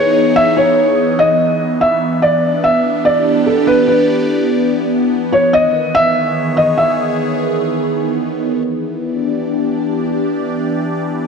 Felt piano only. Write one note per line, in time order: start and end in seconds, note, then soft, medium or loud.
0.00 0.38 C#5 loud
0.36 0.56 E5 loud
0.57 1.21 C#5 loud
1.19 1.83 D#5 loud
1.81 2.20 E5 loud
2.22 2.66 D5 loud
2.64 3.03 E5 loud
3.05 3.48 D5 loud
3.46 3.66 A4 medium
3.67 3.86 B4 medium
3.88 4.67 B4 medium
5.32 5.52 C#5 loud
5.53 5.97 D#5 loud
5.95 6.53 E5 loud
6.57 6.77 D#5 loud
6.78 8.19 E5 medium